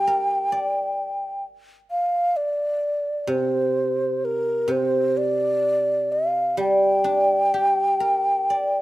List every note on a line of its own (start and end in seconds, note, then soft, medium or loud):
0.00 1.44 G3 soft
0.00 0.98 D4 soft
0.00 1.44 G4 soft
0.00 1.44 G5 medium
0.07 1.92 A#4 soft
0.52 2.37 D5 soft
1.91 2.38 F5 medium
2.36 3.24 D5 medium
3.24 4.66 C3 medium
3.24 3.31 D5 medium
3.30 4.26 C5 medium
4.25 4.73 A#4 medium
4.68 7.52 C3 soft
4.68 5.19 C5 medium
5.17 6.14 D5 medium
6.12 6.59 F5 medium
6.57 8.82 G3 medium
6.57 8.82 G5 medium
7.04 8.82 D4 soft
7.54 8.82 G4 soft
8.00 8.82 A#4 soft
8.50 8.82 D5 soft